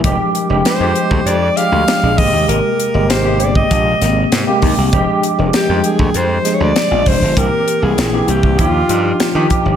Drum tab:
HH |x-x-x-x-x-x-x-o-|x-x-x-x-x-x-x-o-|x-x-x-x-x-x-x-o-|x-x-x-x-x-x-x-x-|
SD |----o-------o---|----o-----o-o---|----o-----o-o---|----o-------o---|
BD |o------o------o-|-------oo-----o-|o------o------o-|o------oo-----o-|